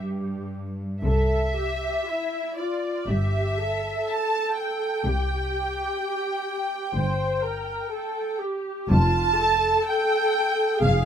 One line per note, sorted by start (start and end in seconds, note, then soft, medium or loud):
0.00 1.02 G2 soft
0.00 0.51 G4 medium
1.02 1.89 C2 medium
1.02 1.89 C3 medium
1.02 1.53 A4 medium
1.02 2.53 E5 medium
1.02 2.55 E5 medium
1.58 2.08 G4 soft
2.08 2.58 E4 soft
2.58 3.09 F4 soft
2.58 3.08 D5 medium
2.58 3.08 D5 soft
3.07 3.89 G1 medium
3.07 3.89 G2 medium
3.07 3.58 G4 soft
3.07 4.08 E5 medium
3.07 4.09 E5 medium
3.60 5.05 A4 medium
4.08 4.57 A5 medium
4.08 4.58 A5 medium
4.57 8.37 G5 medium
4.57 8.41 G5 medium
5.05 5.82 C2 medium
5.05 5.81 C3 medium
5.05 6.95 G4 medium
6.95 7.73 G1 medium
6.95 7.73 G2 medium
6.95 7.42 C5 medium
7.44 7.92 A#4 medium
7.93 8.40 A4 medium
8.41 8.90 G4 medium
8.90 9.69 F1 medium
8.90 9.69 F2 medium
8.90 9.39 F4 medium
8.90 9.83 A5 loud
8.90 9.83 A5 medium
9.38 10.81 A4 medium
9.87 10.82 G5 medium
9.87 10.83 G5 medium
10.81 11.05 F1 medium
10.81 11.05 F2 medium
10.81 11.05 G#4 medium
10.81 11.05 F5 medium